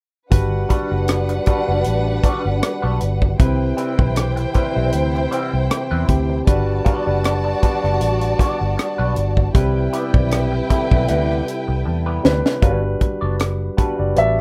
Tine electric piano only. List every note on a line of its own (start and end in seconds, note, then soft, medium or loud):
0.30 0.75 G3 loud
0.30 0.75 D4 medium
0.30 0.75 F#4 loud
0.30 0.75 B4 loud
0.90 1.33 G3 medium
0.90 1.33 D4 medium
0.90 1.34 F#4 medium
0.90 1.34 B4 medium
1.46 2.62 G3 medium
1.46 2.62 D4 medium
1.46 2.62 F#4 medium
1.46 2.62 B4 medium
3.40 3.83 C3 loud
3.40 3.83 C4 medium
3.40 3.83 E4 medium
3.40 3.84 B4 loud
3.99 4.41 E3 medium
3.99 4.42 C4 medium
3.99 4.42 E4 medium
3.99 4.42 B4 medium
4.54 5.69 C3 medium
4.54 5.69 C4 medium
4.54 5.70 E4 medium
4.54 5.70 B4 medium
5.32 5.68 F#5 medium
5.71 6.06 G5 medium
6.08 6.38 C3 medium
6.08 6.38 C4 medium
6.08 6.39 E4 medium
6.08 6.39 G4 medium
6.08 6.45 B5 medium
6.47 6.90 G3 loud
6.47 6.91 D4 loud
6.47 6.91 F#4 loud
6.47 6.91 B4 loud
7.07 7.49 G3 medium
7.07 7.50 D4 medium
7.07 7.50 F#4 medium
7.07 7.50 B4 medium
7.62 8.77 G3 medium
7.62 8.78 D4 medium
7.62 8.78 F#4 medium
7.62 8.78 D5 medium
9.54 9.98 C3 loud
9.54 9.98 G3 loud
9.54 9.98 E4 loud
9.54 9.99 B4 loud
10.13 10.57 G3 medium
10.13 10.56 C4 medium
10.13 10.57 E4 medium
10.13 10.57 D5 medium
10.70 11.85 C3 medium
10.70 11.85 G3 medium
10.70 11.85 E4 medium
10.70 11.86 A4 medium
10.70 11.06 E5 medium
11.09 11.44 F#5 medium
11.47 11.83 G5 medium
11.85 12.21 A5 medium
12.23 12.53 C3 medium
12.23 12.53 G3 medium
12.23 12.53 E4 medium
12.23 12.54 B4 medium
12.23 12.60 B5 medium
12.62 13.49 G3 medium
12.62 13.49 D4 medium
12.62 13.50 F#4 medium
12.62 13.50 B4 loud
13.78 13.93 G3 medium
13.78 13.94 D4 medium
13.78 13.94 F#4 medium
13.78 13.94 B4 medium
13.98 14.41 G3 medium
13.98 14.41 D4 medium
13.98 14.41 F#4 medium
13.98 14.41 D5 medium